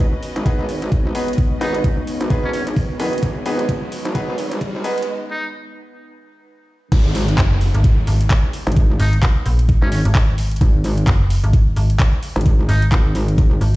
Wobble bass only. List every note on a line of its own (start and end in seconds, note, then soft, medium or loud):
0.00 0.11 G#1 medium
0.36 0.57 G#1 medium
0.59 0.80 G#1 loud
0.82 1.13 G#1 medium
1.61 1.95 G#1 medium
2.21 2.42 G#1 loud
2.44 2.65 G#1 loud
2.67 2.75 G#1 loud
3.00 3.21 F#1 medium
3.23 3.44 G#1 loud
3.46 3.80 G#1 medium
4.05 4.26 G#1 medium
4.28 4.49 G#1 loud
4.52 4.83 G#1 loud
6.92 7.37 G#1 loud
8.67 8.98 G#1 loud
9.82 10.03 G#1 loud
10.61 11.06 G#1 loud
12.36 12.67 G#1 loud
12.92 13.36 G#1 loud
13.38 13.60 G#1 loud